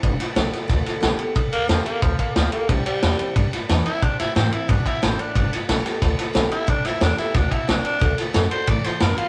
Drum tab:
RD |xxxxxxxx|xxxxxxxx|xxxxxxxx|xxxxxxxx|
SD |-oooooo-|--o---o-|--o--oo-|-oo---o-|
BD |o---o---|o---oo--|o---o---|o---oo--|

RD |xxxxxxxx|xxxxxxxx|xxxxxxxx|
SD |-oooooo-|-oooo-o-|-oo--oo-|
BD |o---o---|o---oo--|o---o---|